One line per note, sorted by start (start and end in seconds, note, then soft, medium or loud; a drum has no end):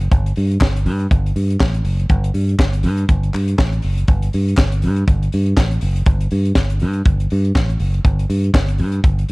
0.01 closed hi-hat soft
0.12 0.31 G1 loud
0.12 kick loud
0.12 closed hi-hat medium
0.26 closed hi-hat soft
0.36 0.57 G2 medium
0.36 open hi-hat medium
0.51 closed hi-hat soft
0.61 0.87 G1 medium
0.61 kick loud
0.61 snare loud
0.61 clap loud
0.76 closed hi-hat medium
0.86 1.06 G2 loud
0.86 open hi-hat medium
0.99 closed hi-hat soft
1.11 1.31 G1 loud
1.11 kick loud
1.11 closed hi-hat medium
1.26 closed hi-hat soft
1.36 1.55 G2 medium
1.36 open hi-hat medium
1.50 closed hi-hat medium
1.60 1.80 A1 medium
1.60 kick loud
1.60 snare medium
1.60 clap medium
1.74 closed hi-hat soft
1.85 2.04 F#1 medium
1.85 open hi-hat medium
2.00 closed hi-hat soft
2.09 2.30 G1 loud
2.09 kick loud
2.09 closed hi-hat medium
2.24 closed hi-hat soft
2.34 2.54 G2 medium
2.34 open hi-hat medium
2.49 closed hi-hat soft
2.59 2.85 G1 medium
2.59 kick medium
2.59 snare medium
2.59 clap loud
2.73 closed hi-hat medium
2.83 3.04 G2 loud
2.83 open hi-hat medium
2.97 closed hi-hat soft
3.09 3.29 G1 loud
3.09 kick loud
3.09 closed hi-hat medium
3.23 closed hi-hat soft
3.33 3.54 G2 medium
3.33 clap medium
3.33 open hi-hat medium
3.48 closed hi-hat medium
3.58 3.79 A1 medium
3.58 kick loud
3.58 snare loud
3.58 clap loud
3.72 closed hi-hat soft
3.82 4.04 F#1 medium
3.82 open hi-hat medium
3.98 closed hi-hat soft
4.08 4.28 G1 loud
4.08 kick loud
4.08 closed hi-hat medium
4.22 closed hi-hat soft
4.33 4.53 G2 medium
4.33 open hi-hat medium
4.48 closed hi-hat soft
4.57 4.85 G1 medium
4.57 kick loud
4.57 snare medium
4.57 clap loud
4.72 closed hi-hat medium
4.82 5.03 G2 medium
4.82 open hi-hat medium
4.96 closed hi-hat soft
5.08 5.27 G1 loud
5.08 kick loud
5.08 closed hi-hat medium
5.23 closed hi-hat soft
5.32 5.53 G2 medium
5.32 open hi-hat medium
5.46 closed hi-hat soft
5.57 5.77 A1 medium
5.57 kick medium
5.57 snare loud
5.57 clap loud
5.71 closed hi-hat soft
5.81 6.02 F#1 medium
5.81 open hi-hat medium
5.96 closed hi-hat soft
6.06 6.26 G1 loud
6.06 kick loud
6.06 closed hi-hat medium
6.21 closed hi-hat medium
6.31 6.51 G2 medium
6.31 open hi-hat medium
6.45 closed hi-hat soft
6.55 6.83 G1 medium
6.55 kick loud
6.55 snare loud
6.55 clap loud
6.70 closed hi-hat medium
6.80 7.01 G2 loud
6.80 open hi-hat medium
6.93 closed hi-hat soft
7.05 7.26 G1 loud
7.05 kick loud
7.05 closed hi-hat medium
7.20 closed hi-hat soft
7.30 7.51 G2 medium
7.30 open hi-hat medium
7.45 closed hi-hat soft
7.55 7.75 A1 medium
7.55 kick loud
7.55 snare medium
7.55 clap loud
7.70 closed hi-hat soft
7.80 8.00 F#1 medium
7.80 open hi-hat medium
7.94 closed hi-hat soft
8.05 8.25 G1 loud
8.05 kick loud
8.05 closed hi-hat medium
8.19 closed hi-hat medium
8.30 8.49 G2 loud
8.30 open hi-hat medium
8.44 closed hi-hat soft
8.54 8.81 G1 medium
8.54 kick loud
8.54 snare loud
8.54 clap loud
8.68 closed hi-hat medium
8.78 8.99 G2 medium
8.78 open hi-hat medium
8.92 closed hi-hat soft
9.04 9.24 G1 loud
9.04 kick loud
9.04 closed hi-hat medium
9.19 closed hi-hat soft
9.29 open hi-hat medium